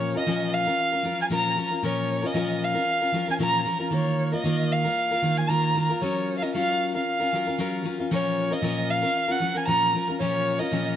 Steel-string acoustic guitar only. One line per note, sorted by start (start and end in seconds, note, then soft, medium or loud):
0.00 0.14 A#2 medium
0.00 0.14 F3 medium
0.00 0.14 C#4 medium
0.00 0.14 F4 medium
0.00 0.13 A#4 medium
0.15 0.26 C#4 soft
0.15 0.26 F4 medium
0.15 0.26 A#4 medium
0.26 0.66 A#2 medium
0.26 0.67 F3 medium
0.26 0.67 C#4 medium
0.26 0.66 F4 medium
0.26 0.65 A#4 medium
0.66 0.93 C#4 soft
0.66 0.92 F4 medium
0.66 0.91 A#4 medium
0.92 1.03 C#4 soft
0.92 1.03 F4 medium
0.92 1.04 A#4 medium
1.02 1.29 F3 medium
1.02 1.30 C#4 medium
1.02 1.30 F4 medium
1.02 1.30 A#4 medium
1.30 1.56 A#2 medium
1.30 1.55 F3 medium
1.30 1.56 C#4 medium
1.30 1.57 F4 medium
1.30 1.57 A#4 medium
1.56 1.71 F3 medium
1.56 1.71 C#4 medium
1.56 1.70 F4 medium
1.56 1.69 A#4 medium
1.70 1.82 C#4 soft
1.70 1.83 F4 soft
1.70 1.82 A#4 medium
1.83 2.23 A#2 medium
1.83 2.23 F3 medium
1.83 2.24 C#4 medium
1.83 2.23 F4 medium
1.83 2.21 A#4 loud
2.22 2.34 C#4 soft
2.22 2.34 F4 medium
2.22 2.34 A#4 medium
2.34 2.75 A#2 medium
2.34 2.75 F3 medium
2.34 2.75 C#4 medium
2.34 2.75 F4 medium
2.34 2.73 A#4 medium
2.74 3.02 C#4 soft
2.74 3.01 F4 medium
2.74 3.00 A#4 medium
3.01 3.12 C#4 soft
3.01 3.13 F4 medium
3.01 3.13 A#4 medium
3.12 3.27 F3 medium
3.12 3.28 C#4 medium
3.12 3.27 F4 medium
3.12 3.26 A#4 medium
3.27 3.39 C#4 soft
3.27 3.39 F4 soft
3.27 3.39 A#4 soft
3.39 3.65 A#2 medium
3.39 3.64 F3 medium
3.39 3.65 C#4 medium
3.39 3.66 F4 medium
3.39 3.66 A#4 medium
3.65 3.80 F3 medium
3.65 3.80 C#4 medium
3.65 3.79 F4 medium
3.65 3.77 A#4 medium
3.79 3.91 C#4 soft
3.79 3.91 F4 medium
3.79 3.91 A#4 medium
3.91 4.32 D#3 medium
3.91 4.32 A#3 medium
3.91 4.32 F4 medium
3.91 4.31 A#4 loud
4.32 4.44 A#3 soft
4.32 4.44 F4 medium
4.32 4.44 A#4 medium
4.44 4.85 D#3 medium
4.44 4.85 A#3 medium
4.44 4.85 F4 medium
4.44 4.83 A#4 medium
4.84 5.12 A#3 soft
4.84 5.11 F4 medium
4.84 5.10 A#4 medium
5.11 5.22 A#3 soft
5.11 5.23 F4 medium
5.11 5.23 A#4 medium
5.22 5.48 D#3 medium
5.22 5.49 A#3 medium
5.22 5.49 F4 medium
5.22 5.50 A#4 medium
5.49 5.74 D#3 medium
5.49 5.75 A#3 medium
5.49 5.76 F4 medium
5.49 5.76 A#4 medium
5.75 5.89 D#3 medium
5.75 5.90 A#3 medium
5.75 5.90 F4 medium
5.75 5.88 A#4 medium
5.89 6.02 A#3 soft
5.89 6.01 F4 medium
5.89 6.01 A#4 medium
6.01 6.42 F#3 medium
6.01 6.42 C#4 medium
6.01 6.42 F4 medium
6.01 6.40 A#4 medium
6.42 6.54 C#4 soft
6.42 6.54 F4 medium
6.42 6.53 A#4 medium
6.54 6.94 F#3 medium
6.54 6.95 C#4 medium
6.54 6.94 F4 medium
6.54 6.93 A#4 medium
6.94 7.21 C#4 soft
6.94 7.20 F4 soft
6.94 7.18 A#4 medium
7.20 7.32 C#4 soft
7.20 7.32 F4 medium
7.20 7.32 A#4 medium
7.33 7.47 F#3 medium
7.33 7.47 C#4 medium
7.33 7.47 F4 medium
7.33 7.45 A#4 medium
7.47 7.58 C#4 soft
7.47 7.59 F4 soft
7.47 7.58 A#4 soft
7.58 7.82 F#3 medium
7.58 7.84 C#4 loud
7.58 7.84 F4 medium
7.58 7.85 A#4 loud
7.84 7.98 F#3 medium
7.84 7.99 C#4 medium
7.84 7.99 F4 medium
7.84 7.98 A#4 medium
7.99 8.10 C#4 soft
7.99 8.11 F4 medium
7.99 8.10 A#4 medium
8.11 8.51 A#2 medium
8.11 8.51 F3 medium
8.11 8.51 C#4 medium
8.11 8.51 F4 medium
8.11 8.49 A#4 medium
8.50 8.61 C#4 soft
8.50 8.62 F4 soft
8.50 8.62 A#4 medium
8.62 9.03 A#2 medium
8.62 9.03 F3 medium
8.62 9.03 C#4 medium
8.62 9.02 F4 medium
8.62 9.01 A#4 medium
9.02 9.29 C#4 soft
9.02 9.28 F4 medium
9.02 9.26 A#4 medium
9.28 9.40 C#4 soft
9.28 9.41 F4 medium
9.28 9.40 A#4 medium
9.40 9.55 F3 medium
9.40 9.55 C#4 medium
9.40 9.55 F4 medium
9.40 9.53 A#4 medium
9.55 9.67 C#4 soft
9.55 9.68 F4 soft
9.55 9.67 A#4 medium
9.67 9.93 A#2 medium
9.67 9.92 F3 medium
9.67 9.93 C#4 medium
9.67 9.94 F4 medium
9.67 9.94 A#4 medium
9.93 10.08 F3 medium
9.93 10.08 C#4 medium
9.93 10.08 F4 medium
9.93 10.07 A#4 medium
10.08 10.19 C#4 soft
10.08 10.20 F4 soft
10.08 10.19 A#4 medium
10.20 10.60 A#2 medium
10.20 10.60 F3 medium
10.20 10.61 C#4 medium
10.20 10.60 F4 medium
10.20 10.58 A#4 medium
10.59 10.71 C#4 soft
10.59 10.71 F4 medium
10.59 10.71 A#4 medium
10.71 10.96 A#2 medium
10.71 10.96 F3 medium
10.71 10.96 C#4 medium
10.71 10.96 F4 medium
10.71 10.96 A#4 medium